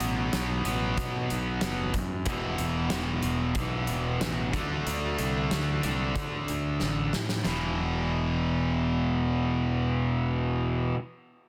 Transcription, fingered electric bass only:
0.00 A1
0.34 B1
0.66 A1
0.97 B2
1.31 B1
1.62 F#1
1.94 F#2
2.26 E1
2.59 E1
2.91 E1
3.24 E1
3.55 B1
3.89 E1
4.21 A1
4.53 D2
4.87 D2
5.19 C2
5.52 D2
5.84 C2
6.16 D3
6.49 D2
6.82 A1
7.13 A2
7.46 E1

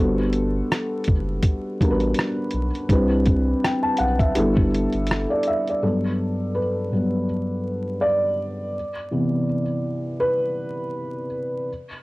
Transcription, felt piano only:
Already playing: G3 B3 D4 C5
0.00 F#4 A4
1.80 G3 B3 D4 F#4 A#4
1.91 B4
2.89 G3 C4 D4 E4 B4
3.64 G5
3.83 A5
3.98 F#5
4.19 E5
4.35 G3 B3 D4 E4 A4
5.30 D5
5.47 E5
5.69 D5
5.82 G2 F#3 B3 A4
6.55 B4
6.92 G2 F#3 B3
8.01 D5
9.11 C3 E3 B3
10.20 B4

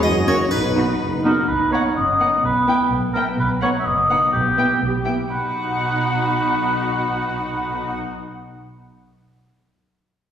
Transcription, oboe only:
1.24 A#4
1.48 B4
1.72 C#5
1.96 D#5
2.45 B4
3.14 A#4
3.40 B4
3.63 C#5
3.80 E5
3.86 D#5
4.33 G4
5.30 B4

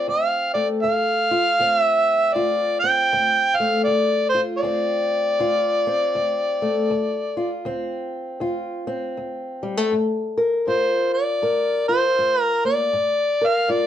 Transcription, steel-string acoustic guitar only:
Already playing: C4 F4
0.08 D2
0.55 A3
0.84 D2
1.31 F4
1.60 D2 C4
2.35 D2 F4
2.84 C4
3.13 D2
3.60 A3
3.87 D2
4.35 F4
4.63 D2 C4
5.40 D2 F4
5.87 C4
6.15 D2
6.62 A3
6.90 D2
7.37 F4
7.65 D2 C4
8.40 D2 F4
8.87 C4
9.17 D2
9.63 G3
9.77 A3
9.92 G2
10.38 A#4
10.67 G2 F4
11.42 G2 A#4
11.89 F4
12.19 G2
12.65 A#3
12.93 G2
13.41 A#4
13.68 G2 F4

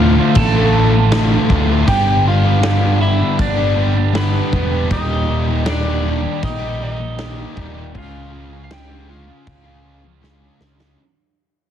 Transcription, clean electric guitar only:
Already playing: F4 F5
0.37 A4 A5
1.88 G4 G5
2.27 F4 F5
3.01 E4 E5
3.41 D4 D5
4.15 B3 B4
4.92 D#4 D#5
5.68 D4 D5
6.43 D#4 D#5
6.82 D#4 D#5
7.61 D5
7.97 F4 F5
8.64 F5
8.71 G4 G5
9.10 F4 F5

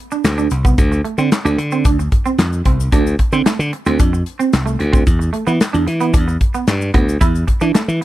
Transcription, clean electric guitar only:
0.12 D4
0.38 D4
0.52 muted clean electric guitar stroke
0.65 B3
0.92 muted clean electric guitar stroke
1.05 A3
1.19 C4
1.45 D4
1.59 muted clean electric guitar stroke
1.72 C4
1.86 D4
1.99 muted clean electric guitar stroke
2.26 C4
2.66 C4
2.93 D4
3.20 muted clean electric guitar stroke
3.33 C4
3.46 A3
3.73 muted clean electric guitar stroke
3.86 C4
4.00 D4
4.13 muted clean electric guitar stroke
4.39 C4
4.66 A3
4.79 muted clean electric guitar stroke
4.93 C4
5.19 muted clean electric guitar stroke
5.33 A3
5.47 B3
5.73 D4
5.87 muted clean electric guitar stroke
6.01 B3
6.14 D4
6.28 muted clean electric guitar stroke
6.54 B3
6.94 B3
7.21 E4
7.48 muted clean electric guitar stroke
7.61 D4
7.75 A3
8.01 muted clean electric guitar stroke

